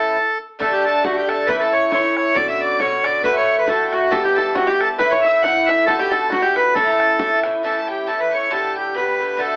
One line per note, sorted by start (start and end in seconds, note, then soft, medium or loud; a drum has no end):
0.00 0.16 A2 medium
0.00 0.16 E3 medium
0.00 0.16 C#4 medium
0.00 0.17 E4 medium
0.00 0.36 A4 medium
0.00 0.38 A4 loud
0.00 0.37 A5 medium
0.59 1.02 G2 medium
0.59 1.03 D3 medium
0.59 1.04 A3 medium
0.59 1.04 D4 medium
0.59 0.73 A4 loud
0.59 0.83 A5 medium
0.59 bodhran medium
0.72 0.85 G4 medium
0.85 1.03 A4 medium
0.85 1.06 A5 medium
1.03 1.26 G2 medium
1.03 1.27 D3 medium
1.03 1.28 A3 medium
1.03 1.28 D4 medium
1.03 1.16 F#4 medium
1.03 1.17 F#5 medium
1.03 bodhran medium
1.16 1.28 G4 medium
1.16 1.30 G5 medium
1.16 bodhran soft
1.27 1.47 G2 soft
1.27 1.47 D3 medium
1.27 1.48 A3 medium
1.27 1.48 D4 medium
1.27 1.49 A4 medium
1.27 1.50 A5 medium
1.27 bodhran medium
1.47 1.89 A2 medium
1.47 1.90 E3 medium
1.47 1.92 C#4 medium
1.47 1.92 E4 medium
1.47 1.56 B4 loud
1.47 1.63 B5 medium
1.47 bodhran medium
1.58 1.73 A4 medium
1.58 1.60 B4 medium
1.58 1.75 A5 medium
1.72 1.92 C#5 medium
1.72 1.92 C#6 medium
1.90 2.34 A2 medium
1.90 2.35 E3 medium
1.90 2.34 C#4 medium
1.90 2.36 E4 medium
1.90 2.15 C#5 medium
1.90 2.15 C#6 medium
1.90 bodhran medium
2.04 bodhran soft
2.17 2.37 C#5 medium
2.17 2.39 C#6 medium
2.17 bodhran medium
2.34 2.78 B2 medium
2.34 2.79 D3 medium
2.34 2.80 C#4 medium
2.34 2.80 F#4 medium
2.34 2.47 D5 loud
2.34 2.51 D6 medium
2.34 bodhran medium
2.48 2.61 E5 medium
2.48 2.64 E6 medium
2.60 2.80 D5 medium
2.60 2.82 D6 medium
2.79 3.02 B2 medium
2.79 3.03 D3 medium
2.79 3.04 C#4 medium
2.79 3.05 F#4 medium
2.79 3.05 C#5 medium
2.79 3.06 C#6 medium
2.79 bodhran medium
2.92 bodhran soft
3.03 3.23 B2 medium
3.03 3.23 D3 medium
3.03 3.24 C#4 medium
3.03 3.24 F#4 medium
3.03 3.22 D5 medium
3.03 3.26 D6 medium
3.03 bodhran medium
3.23 3.65 A2 medium
3.23 3.66 D3 medium
3.23 3.67 A3 medium
3.23 3.68 F#4 loud
3.23 3.35 B4 loud
3.23 3.37 B5 medium
3.23 bodhran medium
3.36 3.57 C#5 loud
3.36 3.61 C#6 medium
3.59 3.68 B4 medium
3.59 3.69 B5 medium
3.66 3.90 A2 medium
3.66 3.91 D3 medium
3.66 3.91 A3 medium
3.66 3.93 F#4 medium
3.66 3.94 A4 medium
3.66 3.85 A5 medium
3.66 bodhran medium
3.80 bodhran soft
3.86 3.95 G5 medium
3.91 4.10 A2 medium
3.91 4.11 D3 medium
3.91 4.12 A3 medium
3.91 4.13 F#4 medium
3.91 4.12 F#4 medium
3.91 4.13 F#5 medium
3.91 bodhran medium
4.11 4.54 G2 medium
4.11 4.55 E3 medium
4.11 4.55 B3 medium
4.11 4.56 G4 loud
4.11 4.23 A4 loud
4.11 4.24 A4 medium
4.11 4.25 A5 medium
4.11 bodhran medium
4.24 4.37 G4 medium
4.24 4.36 G4 medium
4.24 4.37 G5 medium
4.35 4.56 A4 medium
4.35 4.55 A4 medium
4.35 4.57 A5 medium
4.55 4.98 G2 medium
4.55 4.98 E3 medium
4.55 5.00 B3 medium
4.55 4.67 F#4 medium
4.55 4.68 F#4 medium
4.55 5.00 G4 medium
4.55 4.69 F#5 medium
4.55 bodhran medium
4.67 4.97 G4 medium
4.67 4.80 G4 medium
4.67 4.80 G5 medium
4.67 bodhran soft
4.80 4.89 A4 loud
4.80 4.99 A5 medium
4.80 bodhran medium
4.98 5.41 A2 medium
4.98 5.42 E3 medium
4.98 5.43 C#4 medium
4.98 5.43 E4 medium
4.98 5.12 B4 loud
4.98 5.11 B4 medium
4.98 5.13 B5 medium
4.98 bodhran medium
5.11 5.23 C#5 loud
5.11 5.24 C#5 medium
5.11 5.24 C#6 medium
5.21 5.43 E5 medium
5.21 5.42 E5 medium
5.21 5.43 E6 loud
5.42 5.86 A2 medium
5.42 5.87 E3 medium
5.42 5.88 C#4 medium
5.42 5.88 E4 medium
5.42 5.68 F#5 loud
5.42 5.67 F#5 medium
5.42 5.70 F#6 medium
5.42 bodhran medium
5.57 bodhran soft
5.66 5.85 E5 loud
5.66 5.87 E5 medium
5.66 5.89 E6 medium
5.66 bodhran medium
5.86 6.30 A2 medium
5.86 6.31 D3 loud
5.86 6.32 B3 medium
5.86 6.32 F#4 loud
5.86 6.00 A4 loud
5.86 5.99 A4 medium
5.86 6.01 A5 medium
5.86 bodhran medium
5.99 6.12 G4 medium
5.99 6.11 G4 medium
5.99 6.15 G5 medium
6.10 6.31 A4 loud
6.10 6.30 A4 medium
6.10 6.32 A5 loud
6.30 6.75 A2 medium
6.30 6.76 D3 medium
6.30 6.76 B3 medium
6.30 6.43 F#4 medium
6.30 6.42 F#4 medium
6.30 6.47 F#5 medium
6.30 bodhran medium
6.34 6.77 F#4 medium
6.42 6.54 G4 medium
6.42 6.56 G4 medium
6.42 6.59 G5 medium
6.42 bodhran soft
6.56 6.74 B4 medium
6.56 6.74 B4 loud
6.56 6.78 B5 medium
6.56 bodhran medium
6.75 7.18 A2 medium
6.75 7.19 E3 medium
6.75 7.20 C#4 medium
6.75 7.20 E4 medium
6.75 7.40 A4 loud
6.75 7.40 A4 medium
6.75 7.45 A5 medium
6.75 bodhran medium
7.00 bodhran medium
7.19 7.42 A2 medium
7.19 7.44 E3 medium
7.19 7.44 C#4 medium
7.19 7.45 E4 medium
7.19 bodhran medium
7.31 bodhran soft
7.43 7.62 A2 medium
7.43 7.63 E3 medium
7.43 7.63 C#4 medium
7.43 7.64 E4 medium
7.43 bodhran medium
7.63 8.05 A2 medium
7.63 8.06 E3 medium
7.63 8.07 C#4 medium
7.63 8.08 E4 medium
7.63 7.81 A4 medium
7.63 7.70 A5 medium
7.71 7.75 A5 medium
7.75 7.89 A5 medium
7.82 7.88 A4 medium
7.88 8.09 G4 medium
7.88 8.08 G5 medium
8.07 8.30 A2 medium
8.07 8.31 E3 medium
8.07 8.31 C#4 medium
8.07 8.32 E4 medium
8.07 8.20 A4 medium
8.07 8.21 A5 medium
8.20 8.32 B4 medium
8.20 8.30 B5 medium
8.31 8.49 A2 soft
8.31 8.51 E3 medium
8.31 8.51 C#4 medium
8.31 8.52 E4 medium
8.31 8.52 C#5 medium
8.31 8.52 C#6 medium
8.50 8.93 A2 medium
8.50 8.96 D3 medium
8.50 8.95 B3 medium
8.50 8.95 G4 medium
8.50 8.74 A4 loud
8.50 8.77 A5 medium
8.75 8.96 G4 medium
8.75 8.96 G5 medium
8.95 9.18 A2 medium
8.95 9.19 D3 medium
8.95 9.20 B3 medium
8.95 9.21 G4 medium
8.95 9.40 B4 medium
8.95 9.33 B5 medium
9.19 9.36 A2 medium
9.19 9.37 D3 medium
9.19 9.38 B3 medium
9.19 9.39 G4 medium
9.34 9.56 A2 medium
9.34 9.41 B5 soft
9.38 9.56 D3 medium
9.38 9.56 A3 medium
9.38 9.56 F#4 medium
9.38 9.56 A4 loud
9.38 9.56 A5 medium